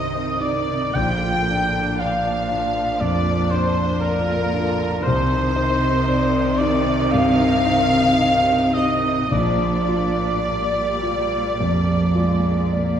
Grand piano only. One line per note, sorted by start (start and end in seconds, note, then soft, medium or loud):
0.00 0.98 G2 soft
0.00 0.40 D#4 soft
0.00 0.73 C5 soft
0.40 0.96 D#4 soft
0.95 2.97 A#1 soft
1.50 2.31 D4 soft
2.01 2.81 D5 soft
2.52 3.32 D4 soft
3.01 3.83 F2 soft
3.51 4.33 D4 soft
4.03 4.84 D5 soft
4.54 5.05 D4 soft
5.06 7.10 C2 soft
5.56 6.39 D#4 soft
6.08 6.92 D5 soft
6.60 7.45 D#4 soft
7.13 7.99 G2 soft
7.67 8.54 D#4 soft
8.21 9.10 D#5 soft
8.77 9.33 D#4 soft
9.31 11.56 A#1 soft
9.88 10.80 F4 soft
10.46 11.38 D5 soft
11.03 11.94 F4 soft
11.60 12.51 F2 soft
12.15 13.00 F4 soft
12.73 13.00 D5 soft